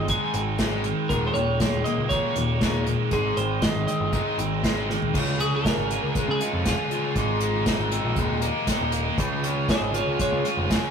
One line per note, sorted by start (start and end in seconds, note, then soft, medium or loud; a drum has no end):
0.00 0.15 G1 medium
0.00 0.34 G#2 medium
0.00 0.59 D#3 medium
0.00 0.60 G#3 medium
0.00 0.33 C4 medium
0.08 0.32 G#2 medium
0.08 0.33 D#3 medium
0.08 0.33 G#3 medium
0.08 2.11 D#4 medium
0.08 0.81 G#5 medium
0.08 kick loud
0.08 closed hi-hat medium
0.34 0.91 G#1 medium
0.34 0.57 G#2 medium
0.34 0.57 D#3 medium
0.34 1.10 C4 medium
0.34 closed hi-hat medium
0.59 0.83 G#2 medium
0.59 0.83 D#3 medium
0.59 0.84 G#3 loud
0.59 kick medium
0.59 snare loud
0.59 closed hi-hat medium
0.84 1.08 G#2 soft
0.84 1.08 D#3 medium
0.84 closed hi-hat medium
1.09 1.29 D#1 medium
1.09 1.34 D#2 medium
1.09 1.34 A#2 medium
1.09 1.34 D#3 medium
1.09 1.27 A#4 medium
1.09 kick loud
1.09 closed hi-hat medium
1.27 1.33 C5 medium
1.34 1.63 D#1 medium
1.34 1.58 D#2 medium
1.34 1.58 A#2 medium
1.34 2.62 D#3 medium
1.34 1.84 C#5 medium
1.34 closed hi-hat medium
1.60 1.83 D#2 medium
1.60 1.83 A#2 medium
1.60 2.62 G#3 medium
1.60 kick loud
1.60 snare loud
1.60 closed hi-hat medium
1.73 1.82 D#1 medium
1.84 2.09 D#2 medium
1.84 2.09 A#2 medium
1.84 2.35 A#3 medium
1.84 2.09 D#5 medium
1.84 closed hi-hat medium
1.98 2.17 C#2 medium
2.09 2.35 D#2 medium
2.09 2.35 A#2 medium
2.09 2.36 D#3 medium
2.09 3.12 D#4 medium
2.09 2.82 C#5 medium
2.09 kick loud
2.09 closed hi-hat medium
2.36 2.93 D#1 medium
2.36 2.59 D#2 medium
2.36 2.59 A#2 medium
2.36 3.12 A#3 medium
2.36 closed hi-hat medium
2.61 2.85 D#2 medium
2.61 2.86 A#2 medium
2.61 2.86 D#3 medium
2.61 3.62 G#3 medium
2.61 kick loud
2.61 snare loud
2.61 closed hi-hat medium
2.86 3.09 D#2 medium
2.86 3.10 A#2 medium
2.86 3.13 D#3 medium
2.86 closed hi-hat medium
3.11 3.31 G#1 medium
3.11 3.36 G#2 medium
3.11 3.36 D#3 medium
3.11 3.36 G#3 medium
3.11 3.39 G#4 medium
3.11 kick loud
3.11 closed hi-hat medium
3.37 3.66 G#1 medium
3.37 3.60 G#2 medium
3.37 3.60 D#3 medium
3.37 3.61 C5 medium
3.37 closed hi-hat medium
3.62 3.85 G#2 medium
3.62 3.86 D#3 medium
3.62 4.62 G#3 medium
3.62 3.86 D#5 medium
3.62 kick medium
3.62 snare loud
3.62 closed hi-hat medium
3.75 3.84 G#1 medium
3.87 4.11 G#2 medium
3.87 4.11 D#3 medium
3.87 4.37 C4 medium
3.87 4.60 D#5 medium
3.87 closed hi-hat medium
4.00 4.19 G1 medium
4.12 4.37 G#2 medium
4.12 4.37 D#3 medium
4.12 4.38 G#3 medium
4.12 5.14 D#4 medium
4.12 kick loud
4.12 closed hi-hat medium
4.38 4.96 G#1 medium
4.38 4.61 G#2 medium
4.38 4.62 D#3 medium
4.38 5.14 C4 medium
4.38 closed hi-hat medium
4.63 4.87 G#2 medium
4.63 4.88 D#3 medium
4.63 4.88 G#3 medium
4.63 kick medium
4.63 snare loud
4.63 closed hi-hat medium
4.89 5.12 G#2 medium
4.89 5.12 D#3 medium
4.89 snare medium
5.02 floor tom medium
5.13 5.62 C#2 loud
5.13 5.64 C#3 medium
5.13 5.64 G#3 medium
5.13 5.40 C#4 medium
5.13 5.38 F4 medium
5.13 5.37 G#4 medium
5.13 kick loud
5.13 crash loud
5.38 5.64 C#4 medium
5.38 5.65 F4 medium
5.38 5.67 G#4 medium
5.38 5.53 G#4 medium
5.38 closed hi-hat medium
5.56 6.28 A#4 medium
5.64 6.66 G#3 medium
5.64 6.41 C#4 medium
5.64 6.40 F4 medium
5.64 6.38 G#4 medium
5.64 kick loud
5.64 snare loud
5.64 closed hi-hat medium
5.78 5.97 G#1 medium
5.90 6.40 F4 medium
5.90 closed hi-hat medium
6.03 6.12 C#2 medium
6.15 8.45 G#3 medium
6.15 kick loud
6.15 closed hi-hat medium
6.28 6.38 C#3 medium
6.28 6.42 G#4 medium
6.39 6.66 C#4 medium
6.39 6.66 D#4 medium
6.39 6.67 F4 medium
6.39 6.68 G#4 medium
6.39 closed hi-hat medium
6.53 6.72 F2 medium
6.65 7.15 C#3 medium
6.65 7.16 G#3 loud
6.65 6.92 C#4 medium
6.65 8.14 F4 medium
6.65 6.91 F4 loud
6.65 6.90 G#4 medium
6.65 kick loud
6.65 snare loud
6.65 closed hi-hat medium
6.90 7.16 C#4 medium
6.90 7.15 F4 medium
6.90 7.18 G#4 medium
6.90 closed hi-hat medium
7.15 7.64 G#1 medium
7.15 7.67 G#2 medium
7.15 7.64 D#3 medium
7.15 7.43 G#3 medium
7.15 7.41 C4 medium
7.15 7.39 D#4 medium
7.15 kick loud
7.15 closed hi-hat medium
7.40 7.67 G#3 medium
7.40 7.67 C4 medium
7.40 7.68 D#4 medium
7.40 closed hi-hat medium
7.66 8.15 D#3 medium
7.66 8.18 G#3 medium
7.66 8.17 C4 medium
7.66 8.17 D#4 medium
7.66 kick loud
7.66 snare loud
7.66 closed hi-hat medium
7.79 7.98 G#1 medium
7.91 8.17 C4 medium
7.91 closed hi-hat medium
8.04 8.14 A#1 medium
8.16 8.26 D#1 medium
8.16 8.65 D#2 medium
8.16 8.66 A#2 medium
8.16 8.43 D#3 medium
8.16 8.43 G#3 medium
8.16 8.41 A#3 medium
8.16 8.40 D#4 medium
8.16 kick loud
8.16 closed hi-hat medium
8.30 8.49 D#1 medium
8.41 8.66 D#3 medium
8.41 8.68 G#3 medium
8.41 8.67 A#3 medium
8.41 8.68 D#4 medium
8.41 closed hi-hat medium
8.66 9.16 D#2 medium
8.66 9.17 A#2 medium
8.66 8.94 D#3 medium
8.66 8.94 G#3 medium
8.66 8.92 A#3 medium
8.66 8.90 D#4 medium
8.66 kick loud
8.66 snare loud
8.66 closed hi-hat medium
8.81 9.09 D#1 medium
8.92 9.18 D#3 medium
8.92 9.18 G#3 soft
8.92 9.17 A#3 medium
8.92 9.16 D#4 medium
8.92 closed hi-hat medium
9.17 9.66 C#2 loud
9.17 9.69 C#3 medium
9.17 9.68 G#3 medium
9.17 9.45 C#4 medium
9.17 9.44 F4 loud
9.17 9.42 G#4 loud
9.17 kick loud
9.17 closed hi-hat medium
9.43 9.68 C#4 medium
9.43 9.69 F4 medium
9.43 9.71 G#4 medium
9.43 closed hi-hat medium
9.68 10.71 G#3 medium
9.68 10.46 C#4 medium
9.68 10.45 F4 medium
9.68 10.44 G#4 medium
9.68 9.95 C5 medium
9.68 9.95 D#5 medium
9.68 kick loud
9.68 snare loud
9.68 closed hi-hat medium
9.81 10.00 G#1 medium
9.94 10.43 F4 medium
9.94 10.18 F4 medium
9.94 10.20 C#5 medium
9.94 closed hi-hat medium
10.07 10.17 C#2 medium
10.18 10.91 G#3 medium
10.18 10.45 C#5 medium
10.18 kick loud
10.18 closed hi-hat medium
10.32 10.42 C#2 medium
10.44 10.71 C#4 medium
10.44 10.71 F4 medium
10.44 10.73 G#4 medium
10.44 closed hi-hat medium
10.57 10.76 F1 loud
10.70 10.91 C#3 medium
10.70 10.91 G#3 medium
10.70 10.91 C#4 loud
10.70 10.91 F4 medium
10.70 10.91 G#4 loud
10.70 kick loud
10.70 snare loud
10.70 closed hi-hat medium